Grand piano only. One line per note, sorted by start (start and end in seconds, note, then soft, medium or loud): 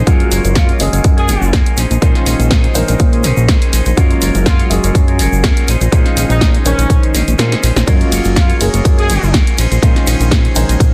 0.06 0.77 F#3 medium
0.06 0.77 G#3 medium
0.06 0.78 A#3 medium
0.06 0.78 C#4 medium
0.06 0.78 F4 medium
0.80 1.76 F#3 medium
0.80 1.76 G#3 medium
0.80 1.77 A#3 medium
0.80 1.77 C#4 medium
0.80 1.77 G#4 medium
2.01 2.72 D#3 medium
2.01 2.72 G#3 medium
2.01 2.73 C#4 medium
2.01 2.73 F4 loud
2.01 2.73 C5 medium
2.74 3.94 D#3 medium
2.74 3.94 G#3 medium
2.74 3.95 C#4 medium
2.74 3.95 A#4 medium
2.74 3.95 C5 medium
3.97 4.67 F#3 medium
3.97 4.68 G#3 medium
3.97 4.68 A#3 medium
3.97 4.68 C#4 medium
3.97 4.68 F4 loud
4.70 5.66 F#3 medium
4.70 5.66 G#3 medium
4.70 5.67 A#3 medium
4.70 5.67 C#4 medium
4.70 5.67 G#4 medium
5.92 6.63 D#3 medium
5.92 6.63 G#3 medium
5.92 6.63 C#4 medium
5.92 6.63 F4 medium
5.92 6.63 C5 medium
6.65 7.85 D#3 medium
6.65 7.85 G#3 medium
6.65 7.85 C#4 medium
6.65 7.85 A#4 medium
6.65 7.85 C5 medium
7.87 8.58 F#3 medium
7.87 8.58 G#3 medium
7.87 8.58 A#3 medium
7.87 8.58 C#4 medium
7.87 8.59 F4 loud
8.60 9.57 F#3 medium
8.60 9.57 G#3 medium
8.60 9.57 A#3 medium
8.60 9.57 C#4 medium
8.60 9.57 G#4 medium
9.82 10.53 D#3 medium
9.82 10.53 G#3 medium
9.82 10.54 C#4 medium
9.82 10.54 F4 loud
9.82 10.53 C5 medium
10.55 10.94 D#3 medium
10.55 10.94 G#3 medium
10.55 10.94 C#4 medium
10.55 10.94 A#4 medium
10.55 10.94 C5 medium